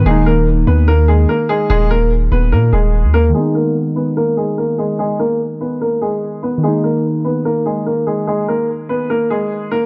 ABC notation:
X:1
M:4/4
L:1/16
Q:1/4=146
K:D#phr
V:1 name="Grand piano"
[G,G]2 [A,A]2 z2 [B,B]2 [A,A]2 [G,G]2 [A,A]2 [G,G]2 | [G,G]2 [A,A]2 z2 [B,B]2 [A,A]2 [G,G]4 [A,A]2 | [G,G]2 [A,A]2 z2 [B,B]2 [A,A]2 [G,G]2 [A,A]2 [G,G]2 | [G,G]2 [A,A]2 z2 [B,B]2 [A,A]2 [G,G]4 [B,B]2 |
[G,G]2 [A,A]2 z2 [B,B]2 [A,A]2 [G,G]2 [A,A]2 [G,G]2 | [G,G]2 [A,A]2 z2 [B,B]2 [A,A]2 [G,G]4 [A,A]2 |]
V:2 name="Synth keys"
[D,A,D]16- | [D,A,D]16 | [D,G,B,D]16- | [D,G,B,D]16 |
[D,A,D]16- | [D,A,D]16 |]
V:3 name="808-style bass" clef=bass
D,,,6 D,,6 z4 | D,,,6 D,,,2 A,,2 D,,,3 D,,3 | z16 | z16 |
z16 | z16 |]